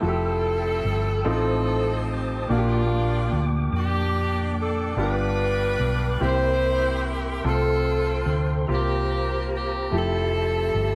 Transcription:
0.00 0.81 F1 medium
0.00 1.26 F3 medium
0.00 1.25 A3 medium
0.00 1.25 E4 medium
0.00 0.08 F#4 soft
0.00 1.25 A4 medium
0.00 1.25 G5 medium
0.00 1.25 E6 medium
0.05 1.24 C4 medium
0.05 1.24 E4 medium
0.05 1.29 G4 medium
0.05 1.27 A4 medium
0.85 1.23 G1 medium
1.25 2.46 A1 medium
1.25 2.45 A2 medium
1.25 2.49 C4 medium
1.25 2.49 D#4 medium
1.25 2.49 F4 medium
1.25 2.50 A4 medium
1.25 2.48 C5 medium
1.25 2.48 A5 medium
1.25 2.48 D#6 medium
1.29 2.48 C4 medium
1.29 2.47 D#4 medium
1.29 2.07 A4 medium
2.12 2.51 G4 medium
2.48 3.28 A#1 medium
2.48 3.70 A#2 medium
2.48 4.94 A#3 medium
2.48 4.93 A#3 medium
2.48 4.93 D4 medium
2.48 3.59 D4 medium
2.48 4.94 F4 medium
2.48 3.48 F4 medium
2.48 2.57 F#4 medium
2.48 7.40 G5 medium
2.48 4.95 D6 medium
2.58 4.97 G4 medium
3.33 3.70 D2 medium
3.73 4.93 F2 medium
3.73 4.94 D4 medium
3.77 4.54 G4 loud
4.59 4.99 A4 medium
4.97 5.75 G1 loud
4.97 6.17 G2 medium
4.97 6.21 B3 medium
4.97 6.21 D4 medium
4.97 6.18 D4 medium
4.97 6.21 F4 medium
4.97 6.18 F4 medium
4.97 6.20 G4 medium
4.97 6.21 B4 medium
4.97 6.19 B4 loud
4.97 6.21 D6 medium
5.80 6.18 B1 medium
6.20 7.41 C2 medium
6.20 7.41 C3 medium
6.20 7.44 A#3 medium
6.20 7.43 C4 medium
6.20 7.45 E4 medium
6.20 7.42 E4 medium
6.20 7.45 G4 medium
6.20 7.42 G4 medium
6.20 7.43 A#4 medium
6.20 7.44 E5 medium
6.20 8.66 C6 medium
6.25 7.05 C5 loud
7.06 7.46 A#4 medium
7.44 8.23 C2 medium
7.44 8.64 C3 medium
7.44 8.68 A3 medium
7.44 8.67 C4 medium
7.44 8.65 C4 medium
7.44 8.67 F4 medium
7.44 8.65 F4 medium
7.44 8.68 A4 medium
7.44 9.90 C5 medium
7.48 8.43 A4 loud
8.26 8.64 D2 medium
8.67 9.88 C2 medium
8.67 9.88 C3 medium
8.67 9.92 A#3 medium
8.67 9.89 A#3 medium
8.67 9.92 C4 medium
8.67 9.92 F4 medium
8.67 10.95 G4 medium
8.67 9.92 G4 medium
8.67 9.90 A#5 medium
8.71 9.48 G4 medium
9.55 9.91 G4 medium
9.90 10.70 F1 medium
9.90 10.95 F3 medium
9.90 10.95 A3 medium
9.90 10.95 E4 medium
9.90 10.95 G4 medium
9.90 10.95 E5 medium
9.90 10.95 A5 medium
9.95 10.95 C4 medium
9.95 10.95 E4 medium
9.95 10.95 A4 loud
10.75 10.95 G1 medium

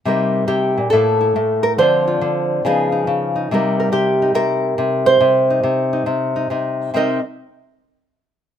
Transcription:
0.05 0.46 C3 medium
0.05 0.90 G3 soft
0.05 0.92 A#3 soft
0.05 0.91 D#4 soft
0.05 0.47 A#4 soft
0.47 0.77 C3 medium
0.47 0.90 G4 medium
0.78 0.92 A#2 medium
0.90 1.35 A2 medium
0.90 1.76 A3 soft
0.90 1.79 A#3 soft
0.90 1.62 A4 medium
0.94 1.19 E4 soft
1.21 1.76 E4 soft
1.36 1.77 A2 medium
1.63 1.72 A#4 medium
1.78 2.20 D3 medium
1.78 2.64 F3 soft
1.78 2.63 C4 soft
1.78 2.06 F4 soft
1.78 2.64 C5 medium
2.08 2.63 F4 soft
2.21 2.62 D3 medium
2.65 3.06 C#3 medium
2.65 3.50 F3 soft
2.65 3.49 B3 soft
2.65 2.92 D#4 soft
2.65 3.50 G#4 medium
2.92 3.35 D#4 soft
3.07 3.48 C#3 medium
3.36 3.53 D#4 soft
3.51 3.92 C3 medium
3.51 6.94 G3 soft
3.51 6.94 A#3 soft
3.51 4.22 D#4 soft
3.51 3.79 A#4 soft
3.80 3.92 A#4 soft
3.92 4.34 C3 medium
3.92 4.35 G4 medium
4.22 5.50 D#4 soft
4.35 4.78 C3 medium
4.35 5.06 A#4 medium
4.78 5.20 C3 medium
5.06 6.92 C5 medium
5.20 5.62 C3 medium
5.50 5.92 D#4 soft
5.63 6.05 C3 medium
5.93 6.35 D#4 soft
6.06 6.49 C3 medium
6.36 6.50 D#4 soft
6.50 6.92 C3 medium
6.50 6.91 D#4 soft
6.94 7.19 C3 medium
6.94 7.19 C4 medium
6.94 7.20 D#4 medium
6.94 7.20 A#4 medium
6.94 7.21 D#5 medium

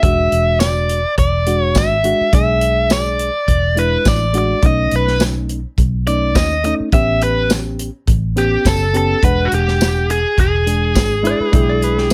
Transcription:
0.03 0.27 E1 medium
0.03 0.98 G#3 medium
0.03 0.99 D4 medium
0.03 0.99 F#4 medium
0.03 0.60 E5 medium
0.03 kick loud
0.03 closed hi-hat medium
0.32 1.04 E1 medium
0.32 closed hi-hat medium
0.60 1.14 D5 medium
0.60 snare loud
0.60 closed hi-hat medium
0.60 tambourine loud
0.89 closed hi-hat medium
1.18 1.75 E1 medium
1.18 1.61 D5 medium
1.18 kick medium
1.18 closed hi-hat medium
1.46 1.94 G#3 medium
1.46 1.95 D4 medium
1.46 1.95 F#4 medium
1.46 closed hi-hat medium
1.61 1.77 C#5 medium
1.75 2.12 G#1 medium
1.75 2.33 E5 medium
1.75 kick medium
1.75 snare medium
1.75 closed hi-hat medium
1.75 tambourine loud
2.04 2.28 G#3 medium
2.04 2.28 D4 medium
2.04 2.29 F#4 medium
2.04 closed hi-hat medium
2.21 muted fingered electric bass stroke soft
2.32 3.29 B1 medium
2.32 3.28 G#3 medium
2.32 3.29 D4 medium
2.32 3.29 G#4 medium
2.32 2.92 E5 loud
2.32 kick loud
2.32 closed hi-hat medium
2.61 closed hi-hat medium
2.90 3.80 D5 medium
2.90 snare loud
2.90 closed hi-hat medium
2.90 tambourine medium
3.19 closed hi-hat medium
3.48 3.96 E1 medium
3.48 kick medium
3.48 closed hi-hat medium
3.75 4.24 G#3 medium
3.75 4.25 D4 medium
3.75 4.25 E4 medium
3.75 4.07 B4 medium
3.75 closed hi-hat medium
4.05 4.53 A1 medium
4.05 4.36 D5 medium
4.05 kick medium
4.05 snare loud
4.05 closed hi-hat medium
4.05 tambourine medium
4.33 4.58 G#3 medium
4.33 4.58 D4 medium
4.33 4.58 F#4 medium
4.33 closed hi-hat medium
4.38 4.65 D5 medium
4.62 4.87 B1 loud
4.62 5.58 A3 medium
4.62 5.59 C#4 medium
4.62 5.59 D#4 medium
4.62 4.94 D#5 medium
4.62 kick loud
4.62 closed hi-hat medium
4.91 5.63 B1 medium
4.91 closed hi-hat medium
4.96 5.20 B4 medium
5.07 snare soft
5.20 snare loud
5.20 closed hi-hat medium
5.20 tambourine loud
5.49 closed hi-hat soft
5.78 6.36 B1 medium
5.78 kick medium
5.78 closed hi-hat medium
6.06 6.54 A3 medium
6.06 6.55 C#4 medium
6.06 6.55 D#4 medium
6.06 6.36 D5 medium
6.06 closed hi-hat medium
6.35 6.72 D#2 medium
6.35 6.64 D#5 medium
6.35 kick medium
6.35 snare loud
6.35 closed hi-hat medium
6.35 tambourine medium
6.64 6.88 A3 medium
6.64 6.88 C#4 medium
6.64 6.89 D#4 medium
6.64 6.73 D#5 medium
6.64 closed hi-hat medium
6.80 muted fingered electric bass stroke soft
6.92 7.88 A1 medium
6.92 7.88 B3 medium
6.92 7.89 C#4 medium
6.92 7.89 G4 medium
6.92 7.20 E5 loud
6.92 kick loud
6.92 closed hi-hat medium
7.21 7.49 B4 medium
7.21 closed hi-hat medium
7.50 snare loud
7.50 closed hi-hat medium
7.50 tambourine loud
7.79 closed hi-hat medium
8.07 8.56 A1 medium
8.07 kick medium
8.07 closed hi-hat medium
8.36 8.84 B3 medium
8.36 8.85 C#4 medium
8.36 8.85 G4 medium
8.36 8.67 G4 medium
8.36 closed hi-hat medium
8.65 9.13 F#1 medium
8.65 8.96 A4 medium
8.65 kick medium
8.65 snare loud
8.65 closed hi-hat medium
8.65 tambourine loud
8.93 9.18 B3 medium
8.93 9.18 C#4 medium
8.93 9.18 G4 medium
8.93 9.24 A4 medium
8.93 closed hi-hat medium
9.23 9.47 E1 loud
9.23 10.18 G#3 medium
9.23 10.19 D4 medium
9.23 9.46 B4 loud
9.23 10.19 F#5 medium
9.23 kick loud
9.23 closed hi-hat medium
9.45 9.52 F#4 medium
9.52 10.24 E1 medium
9.52 10.11 G4 medium
9.52 closed hi-hat medium
9.68 snare soft
9.81 snare loud
9.81 closed hi-hat medium
9.81 tambourine loud
10.10 10.39 G#4 medium
10.10 closed hi-hat medium
10.38 10.96 E1 medium
10.38 12.13 G#4 medium
10.38 kick medium
10.38 closed hi-hat medium
10.66 11.14 G#3 medium
10.66 11.15 D4 medium
10.66 11.15 G#4 medium
10.66 closed hi-hat medium
10.95 11.32 G#1 medium
10.95 kick medium
10.95 snare loud
10.95 closed hi-hat medium
10.95 tambourine loud
11.23 11.47 G#3 medium
11.23 11.48 D4 medium
11.23 11.48 E4 medium
11.23 closed hi-hat medium
11.27 11.40 D5 medium
11.40 11.53 B4 medium
11.40 muted fingered electric bass stroke soft
11.52 12.13 B1 medium
11.52 12.13 G#3 medium
11.52 12.13 D4 medium
11.52 12.13 E4 medium
11.52 11.69 G4 medium
11.52 kick loud
11.52 closed hi-hat medium
11.69 11.82 D5 medium
11.82 11.97 B4 medium
11.82 closed hi-hat medium
11.98 12.11 G4 medium
11.98 snare soft
12.10 closed hi-hat medium
12.10 tambourine loud

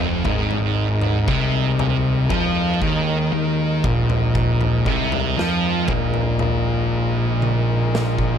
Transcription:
0.00 0.22 F1 loud
0.00 0.24 F2 loud
0.24 1.24 G#1 medium
0.24 1.26 G#2 loud
0.24 8.38 G#3 medium
0.24 8.38 D#4 medium
0.24 8.38 A#4 medium
0.24 kick loud
0.24 floor tom medium
0.51 floor tom medium
1.02 floor tom medium
1.26 2.26 C2 loud
1.26 2.28 C3 loud
1.26 kick loud
1.79 floor tom medium
1.79 mid tom medium
2.29 2.78 F2 medium
2.29 2.79 F3 loud
2.29 kick loud
2.29 floor tom medium
2.29 mid tom medium
2.82 3.29 D#2 loud
2.82 3.32 D#3 loud
2.82 kick loud
3.33 3.80 D#2 medium
3.33 3.82 D#3 loud
3.84 4.82 A#1 loud
3.84 4.85 A#2 loud
3.84 kick loud
3.84 floor tom medium
4.10 floor tom medium
4.35 kick loud
4.35 floor tom medium
4.61 floor tom medium
4.85 5.34 C2 medium
4.85 5.35 C3 loud
4.85 kick medium
4.85 mid tom medium
5.12 floor tom medium
5.37 5.85 F2 medium
5.37 5.87 F3 loud
5.37 snare medium
5.88 8.38 A#1 medium
5.88 8.38 A#2 loud
5.88 kick loud
5.88 floor tom medium
5.88 mid tom medium
6.14 floor tom medium
6.39 floor tom medium
7.42 high tom medium
7.95 snare medium
8.18 kick medium

